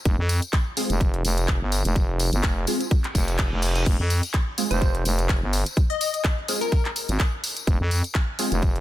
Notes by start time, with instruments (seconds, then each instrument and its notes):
0.05 fm bass F1, kick, closed hi-hat, tambourine
0.18 fm bass F2
0.29 open hi-hat, tambourine
0.42 closed hi-hat, tambourine
0.53 kick, clap, closed hi-hat
0.77 synth stab G#3 C4 F4 G#4, open hi-hat, tambourine
0.90 fm bass F1, closed hi-hat, tambourine
1.01 kick, closed hi-hat, tambourine
1.14 closed hi-hat
1.24 fm bass F1, open hi-hat, tambourine
1.37 closed hi-hat, tambourine
1.48 kick, clap, closed hi-hat, tambourine
1.61 fm bass G1
1.72 open hi-hat, tambourine
1.85 fm bass F1, closed hi-hat, tambourine
1.96 kick, closed hi-hat, tambourine
2.19 open hi-hat, tambourine
2.33 fm bass G1, closed hi-hat, tambourine
2.43 fm bass F1, kick, clap, closed hi-hat, tambourine
2.67 synth stab G#3 C4 F4 G#4, open hi-hat, tambourine
2.81 closed hi-hat, tambourine
2.91 kick, closed hi-hat, tambourine, reverse cymbal
3.04 clap, closed hi-hat
3.15 fm bass F1, kick, open hi-hat, tambourine
3.28 closed hi-hat, tambourine
3.38 kick, clap, closed hi-hat, tambourine
3.52 fm bass F1
3.62 open hi-hat, tambourine
3.76 closed hi-hat, tambourine
3.86 fm bass F1, kick, closed hi-hat, crash, tambourine
3.99 fm bass F2
4.10 open hi-hat, tambourine
4.23 closed hi-hat, tambourine
4.34 kick, clap, closed hi-hat, tambourine
4.58 synth stab G#3 C4 F4 G#4, open hi-hat, tambourine
4.71 fm bass F1, synth pluck C5, closed hi-hat, tambourine
4.82 kick, closed hi-hat, tambourine
4.95 closed hi-hat
5.05 fm bass F1, open hi-hat, tambourine
5.18 closed hi-hat, tambourine
5.29 kick, clap, closed hi-hat, tambourine
5.42 fm bass G1
5.53 open hi-hat, tambourine
5.66 closed hi-hat, tambourine
5.77 kick, closed hi-hat, tambourine
5.90 synth pluck D#5
6.01 synth pluck D#5, open hi-hat, tambourine
6.14 closed hi-hat, tambourine
6.24 kick, clap, closed hi-hat
6.48 synth stab G#3 C4 F4 G#4, open hi-hat, tambourine
6.61 synth pluck A#4, closed hi-hat, tambourine
6.72 synth pluck A#4, kick, closed hi-hat
6.85 clap, closed hi-hat
6.96 open hi-hat, tambourine
7.08 fm bass G#1, closed hi-hat, tambourine
7.20 kick, clap, closed hi-hat, tambourine
7.44 open hi-hat, tambourine
7.57 closed hi-hat, tambourine
7.67 fm bass F1, kick, closed hi-hat, tambourine
7.80 fm bass F2
7.91 open hi-hat, tambourine
8.04 closed hi-hat, tambourine
8.15 kick, clap, closed hi-hat
8.39 synth stab G#3 C4 F4 G#4, open hi-hat, tambourine
8.52 fm bass F1, closed hi-hat, tambourine
8.62 kick, closed hi-hat, tambourine
8.76 closed hi-hat